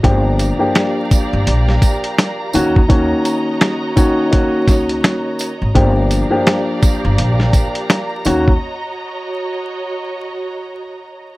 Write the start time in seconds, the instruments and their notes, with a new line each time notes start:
0.03 upright bass G1, grand piano F3 A#3 D4 G4, string section G4 D5 F5 A#5, kick, closed hi-hat
0.39 closed hi-hat, tambourine
0.59 grand piano F3 A#3 D4 G4
0.75 snare, closed hi-hat
1.11 kick, closed hi-hat, tambourine
1.33 upright bass G1
1.47 upright bass A#1, closed hi-hat
1.69 snare
1.82 kick, closed hi-hat, tambourine
2.04 closed hi-hat
2.18 snare, closed hi-hat
2.53 upright bass D#2, grand piano D#3 A#3 C#4 F#4, string section F#4 C#5 D#5, closed hi-hat, tambourine
2.76 kick
2.88 grand piano D#3 A#3 C#4 F#4, kick, closed hi-hat
3.25 closed hi-hat, tambourine
3.61 snare, closed hi-hat
3.96 grand piano D#3 A#3 C#4 F#4, kick, closed hi-hat, tambourine
4.31 grand piano D#3 A#3 C#4 F#4, kick, closed hi-hat
4.68 upright bass C#2, kick, snare, closed hi-hat, tambourine
4.89 closed hi-hat
5.04 snare, closed hi-hat
5.39 closed hi-hat, tambourine
5.62 upright bass G#1
5.75 upright bass G1, grand piano F3 A#3 D4 G4, string section G4 D5 F5 A#5, kick, closed hi-hat
6.11 closed hi-hat, tambourine
6.30 grand piano F3 A#3 D4 G4
6.47 snare, closed hi-hat
6.83 kick, closed hi-hat, tambourine
7.05 upright bass G1
7.18 upright bass A#1, closed hi-hat
7.40 snare
7.53 kick, closed hi-hat, tambourine
7.75 closed hi-hat
7.90 snare, closed hi-hat
8.25 upright bass D#2, grand piano D#3 A#3 C#4 F#4, string section F#4 C#5 D#5, closed hi-hat, tambourine
8.48 kick